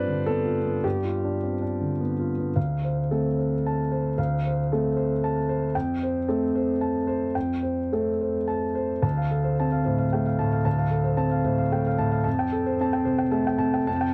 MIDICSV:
0, 0, Header, 1, 2, 480
1, 0, Start_track
1, 0, Tempo, 571973
1, 710, Time_signature, 3, 2, 24, 8
1, 2148, Tempo, 540541
1, 3588, Tempo, 524017
1, 5988, Tempo, 559180
1, 7908, Tempo, 537153
1, 12465, End_track
2, 0, Start_track
2, 0, Title_t, "Grand piano"
2, 0, Program_c, 0, 0
2, 0, Control_c, 0, 64, 127
2, 0, Note_on_c, 0, 43, 52
2, 0, Note_on_c, 0, 60, 35
2, 0, Note_on_c, 0, 62, 36
2, 0, Note_on_c, 0, 65, 43
2, 0, Note_on_c, 0, 71, 79
2, 0, Note_on_c, 0, 72, 76
2, 0, Note_on_c, 0, 74, 96
2, 67, Note_on_c, 0, 50, 34
2, 162, Note_off_c, 0, 62, 0
2, 223, Note_on_c, 0, 69, 74
2, 226, Note_off_c, 0, 71, 0
2, 228, Note_on_c, 0, 59, 40
2, 322, Note_off_c, 0, 50, 0
2, 383, Note_off_c, 0, 65, 0
2, 383, Note_on_c, 0, 65, 34
2, 484, Note_off_c, 0, 59, 0
2, 548, Note_on_c, 0, 59, 35
2, 643, Note_off_c, 0, 65, 0
2, 679, Note_off_c, 0, 43, 0
2, 708, Note_on_c, 0, 67, 62
2, 709, Note_off_c, 0, 69, 0
2, 710, Note_on_c, 0, 43, 45
2, 727, Control_c, 0, 64, 0
2, 733, Note_off_c, 0, 60, 0
2, 734, Note_off_c, 0, 72, 0
2, 734, Note_off_c, 0, 74, 0
2, 808, Note_off_c, 0, 59, 0
2, 848, Control_c, 0, 64, 127
2, 874, Note_on_c, 0, 65, 34
2, 1042, Note_on_c, 0, 62, 30
2, 1130, Note_off_c, 0, 65, 0
2, 1201, Note_on_c, 0, 60, 26
2, 1293, Note_off_c, 0, 62, 0
2, 1356, Note_off_c, 0, 60, 0
2, 1356, Note_on_c, 0, 62, 30
2, 1522, Note_on_c, 0, 50, 28
2, 1609, Note_off_c, 0, 62, 0
2, 1670, Note_off_c, 0, 67, 0
2, 1682, Note_on_c, 0, 59, 30
2, 1772, Note_off_c, 0, 50, 0
2, 1840, Note_on_c, 0, 65, 32
2, 1934, Note_off_c, 0, 59, 0
2, 1999, Note_on_c, 0, 59, 31
2, 2091, Note_off_c, 0, 65, 0
2, 2114, Note_off_c, 0, 43, 0
2, 2145, Note_on_c, 0, 77, 37
2, 2150, Note_on_c, 0, 38, 44
2, 2151, Note_off_c, 0, 59, 0
2, 2165, Control_c, 0, 64, 0
2, 2320, Control_c, 0, 64, 127
2, 2400, Note_on_c, 0, 72, 31
2, 2533, Note_off_c, 0, 77, 0
2, 2617, Note_off_c, 0, 38, 0
2, 2636, Note_on_c, 0, 57, 31
2, 2638, Note_on_c, 0, 69, 39
2, 2642, Note_on_c, 0, 60, 31
2, 2781, Note_off_c, 0, 72, 0
2, 2882, Note_on_c, 0, 72, 33
2, 3018, Note_off_c, 0, 69, 0
2, 3129, Note_on_c, 0, 81, 38
2, 3259, Note_off_c, 0, 72, 0
2, 3353, Note_on_c, 0, 72, 39
2, 3501, Note_off_c, 0, 81, 0
2, 3554, Note_off_c, 0, 57, 0
2, 3557, Note_off_c, 0, 60, 0
2, 3587, Note_on_c, 0, 38, 46
2, 3588, Note_on_c, 0, 77, 42
2, 3602, Control_c, 0, 64, 0
2, 3734, Note_off_c, 0, 72, 0
2, 3758, Control_c, 0, 64, 127
2, 3852, Note_on_c, 0, 72, 37
2, 3971, Note_off_c, 0, 77, 0
2, 4051, Note_off_c, 0, 38, 0
2, 4081, Note_on_c, 0, 69, 45
2, 4087, Note_on_c, 0, 57, 40
2, 4087, Note_on_c, 0, 60, 35
2, 4220, Note_off_c, 0, 72, 0
2, 4304, Note_on_c, 0, 72, 42
2, 4453, Note_off_c, 0, 69, 0
2, 4555, Note_on_c, 0, 81, 47
2, 4684, Note_off_c, 0, 72, 0
2, 4786, Note_on_c, 0, 72, 46
2, 4930, Note_off_c, 0, 81, 0
2, 4992, Note_off_c, 0, 57, 0
2, 4992, Note_off_c, 0, 60, 0
2, 5021, Note_off_c, 0, 72, 0
2, 5026, Note_on_c, 0, 41, 55
2, 5026, Note_on_c, 0, 79, 50
2, 5036, Control_c, 0, 64, 0
2, 5183, Control_c, 0, 64, 127
2, 5283, Note_on_c, 0, 72, 43
2, 5405, Note_off_c, 0, 79, 0
2, 5487, Note_off_c, 0, 41, 0
2, 5514, Note_on_c, 0, 69, 46
2, 5516, Note_on_c, 0, 60, 42
2, 5521, Note_on_c, 0, 57, 39
2, 5655, Note_off_c, 0, 72, 0
2, 5761, Note_on_c, 0, 72, 42
2, 5896, Note_off_c, 0, 69, 0
2, 5996, Note_on_c, 0, 81, 46
2, 6136, Note_off_c, 0, 72, 0
2, 6219, Note_on_c, 0, 72, 44
2, 6368, Note_off_c, 0, 81, 0
2, 6433, Note_off_c, 0, 60, 0
2, 6436, Note_off_c, 0, 57, 0
2, 6461, Note_on_c, 0, 79, 41
2, 6462, Note_on_c, 0, 41, 45
2, 6477, Control_c, 0, 64, 0
2, 6598, Control_c, 0, 64, 127
2, 6603, Note_off_c, 0, 72, 0
2, 6696, Note_on_c, 0, 72, 36
2, 6846, Note_off_c, 0, 79, 0
2, 6930, Note_off_c, 0, 41, 0
2, 6954, Note_on_c, 0, 57, 35
2, 6958, Note_on_c, 0, 69, 39
2, 6962, Note_on_c, 0, 60, 33
2, 7087, Note_off_c, 0, 72, 0
2, 7202, Note_on_c, 0, 72, 38
2, 7340, Note_off_c, 0, 69, 0
2, 7428, Note_on_c, 0, 81, 44
2, 7581, Note_off_c, 0, 72, 0
2, 7662, Note_on_c, 0, 72, 39
2, 7812, Note_off_c, 0, 81, 0
2, 7877, Note_off_c, 0, 57, 0
2, 7881, Note_off_c, 0, 60, 0
2, 7897, Note_on_c, 0, 38, 58
2, 7897, Note_on_c, 0, 81, 49
2, 7902, Note_off_c, 0, 72, 0
2, 7924, Control_c, 0, 64, 0
2, 8029, Note_on_c, 0, 77, 43
2, 8054, Control_c, 0, 64, 127
2, 8095, Note_off_c, 0, 81, 0
2, 8151, Note_on_c, 0, 69, 42
2, 8221, Note_off_c, 0, 77, 0
2, 8269, Note_on_c, 0, 72, 43
2, 8343, Note_off_c, 0, 69, 0
2, 8407, Note_on_c, 0, 81, 48
2, 8412, Note_on_c, 0, 60, 45
2, 8463, Note_off_c, 0, 72, 0
2, 8518, Note_on_c, 0, 77, 47
2, 8593, Note_off_c, 0, 81, 0
2, 8632, Note_on_c, 0, 72, 42
2, 8639, Note_on_c, 0, 45, 39
2, 8709, Note_off_c, 0, 77, 0
2, 8754, Note_on_c, 0, 77, 43
2, 8790, Note_off_c, 0, 60, 0
2, 8827, Note_off_c, 0, 72, 0
2, 8882, Note_on_c, 0, 79, 40
2, 8889, Note_on_c, 0, 57, 42
2, 8947, Note_off_c, 0, 77, 0
2, 8999, Note_off_c, 0, 79, 0
2, 9000, Note_on_c, 0, 77, 43
2, 9023, Note_off_c, 0, 45, 0
2, 9112, Note_on_c, 0, 45, 42
2, 9113, Note_on_c, 0, 81, 49
2, 9188, Note_off_c, 0, 77, 0
2, 9236, Note_on_c, 0, 77, 46
2, 9264, Note_off_c, 0, 57, 0
2, 9304, Note_off_c, 0, 81, 0
2, 9312, Note_off_c, 0, 38, 0
2, 9346, Note_on_c, 0, 81, 53
2, 9356, Note_on_c, 0, 38, 54
2, 9368, Control_c, 0, 64, 0
2, 9424, Note_off_c, 0, 77, 0
2, 9465, Note_on_c, 0, 77, 47
2, 9492, Note_off_c, 0, 45, 0
2, 9517, Control_c, 0, 64, 127
2, 9538, Note_off_c, 0, 81, 0
2, 9578, Note_on_c, 0, 69, 45
2, 9657, Note_off_c, 0, 77, 0
2, 9694, Note_on_c, 0, 72, 44
2, 9774, Note_off_c, 0, 69, 0
2, 9815, Note_on_c, 0, 60, 48
2, 9816, Note_on_c, 0, 81, 52
2, 9892, Note_off_c, 0, 72, 0
2, 9944, Note_on_c, 0, 77, 47
2, 10014, Note_off_c, 0, 81, 0
2, 10059, Note_on_c, 0, 45, 42
2, 10061, Note_on_c, 0, 72, 45
2, 10138, Note_off_c, 0, 77, 0
2, 10181, Note_on_c, 0, 77, 49
2, 10206, Note_off_c, 0, 60, 0
2, 10257, Note_off_c, 0, 72, 0
2, 10307, Note_on_c, 0, 57, 48
2, 10309, Note_on_c, 0, 79, 44
2, 10378, Note_off_c, 0, 77, 0
2, 10430, Note_off_c, 0, 79, 0
2, 10438, Note_on_c, 0, 77, 52
2, 10449, Note_off_c, 0, 45, 0
2, 10540, Note_on_c, 0, 45, 48
2, 10541, Note_on_c, 0, 81, 55
2, 10626, Note_off_c, 0, 77, 0
2, 10663, Note_on_c, 0, 77, 51
2, 10693, Note_off_c, 0, 57, 0
2, 10738, Note_off_c, 0, 81, 0
2, 10756, Note_off_c, 0, 38, 0
2, 10770, Note_on_c, 0, 81, 56
2, 10772, Note_on_c, 0, 41, 62
2, 10785, Note_off_c, 0, 45, 0
2, 10786, Note_off_c, 0, 77, 0
2, 10804, Control_c, 0, 64, 0
2, 10905, Note_on_c, 0, 79, 51
2, 10959, Control_c, 0, 64, 127
2, 10971, Note_off_c, 0, 81, 0
2, 11025, Note_on_c, 0, 69, 50
2, 11098, Note_off_c, 0, 79, 0
2, 11149, Note_on_c, 0, 72, 49
2, 11218, Note_off_c, 0, 69, 0
2, 11277, Note_on_c, 0, 60, 53
2, 11281, Note_on_c, 0, 81, 56
2, 11340, Note_off_c, 0, 72, 0
2, 11388, Note_on_c, 0, 79, 52
2, 11466, Note_off_c, 0, 81, 0
2, 11494, Note_on_c, 0, 72, 50
2, 11497, Note_on_c, 0, 48, 45
2, 11578, Note_off_c, 0, 79, 0
2, 11615, Note_on_c, 0, 79, 52
2, 11654, Note_off_c, 0, 60, 0
2, 11691, Note_off_c, 0, 72, 0
2, 11731, Note_on_c, 0, 81, 50
2, 11734, Note_on_c, 0, 57, 57
2, 11812, Note_off_c, 0, 79, 0
2, 11858, Note_off_c, 0, 81, 0
2, 11868, Note_on_c, 0, 79, 52
2, 11885, Note_off_c, 0, 48, 0
2, 11969, Note_on_c, 0, 48, 53
2, 11970, Note_on_c, 0, 81, 59
2, 12060, Note_off_c, 0, 79, 0
2, 12107, Note_on_c, 0, 79, 52
2, 12126, Note_off_c, 0, 57, 0
2, 12172, Note_off_c, 0, 81, 0
2, 12183, Note_off_c, 0, 41, 0
2, 12227, Note_on_c, 0, 41, 74
2, 12227, Note_on_c, 0, 81, 64
2, 12242, Control_c, 0, 64, 0
2, 12300, Note_off_c, 0, 79, 0
2, 12348, Note_on_c, 0, 79, 60
2, 12363, Note_off_c, 0, 48, 0
2, 12379, Control_c, 0, 64, 127
2, 12418, Note_off_c, 0, 81, 0
2, 12465, Note_off_c, 0, 41, 0
2, 12465, Note_off_c, 0, 79, 0
2, 12465, End_track
0, 0, End_of_file